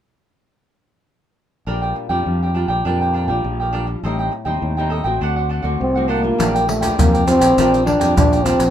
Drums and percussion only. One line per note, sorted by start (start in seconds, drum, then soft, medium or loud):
6.40 pandeiro medium
6.40 maracas medium
6.40 surdo medium
6.56 pandeiro soft
6.56 maracas soft
6.69 pandeiro medium
6.83 pandeiro medium
6.83 maracas medium
6.83 surdo soft
6.99 pandeiro medium
6.99 maracas medium
6.99 surdo medium
7.15 pandeiro soft
7.15 maracas soft
7.28 pandeiro medium
7.28 maracas medium
7.28 surdo soft
7.42 pandeiro medium
7.42 maracas medium
7.58 pandeiro medium
7.58 maracas medium
7.58 surdo medium
7.74 pandeiro soft
7.74 maracas soft
7.87 pandeiro medium
7.87 surdo soft
8.01 pandeiro medium
8.01 maracas medium
8.01 surdo soft
8.17 pandeiro medium
8.17 maracas medium
8.17 surdo medium
8.33 pandeiro soft
8.33 maracas soft
8.46 pandeiro medium
8.46 maracas medium
8.60 pandeiro medium
8.60 maracas medium
8.60 surdo soft